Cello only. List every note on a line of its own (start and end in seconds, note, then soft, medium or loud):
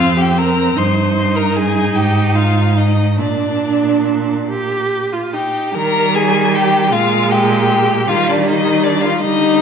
0.00 0.75 F2 medium
0.76 1.92 G2 medium
1.95 3.19 G#2 medium
3.18 5.53 A#2 medium
5.76 6.94 D#3 medium
6.93 8.10 A#2 loud
8.08 9.25 D#3 medium
9.23 9.62 D3 medium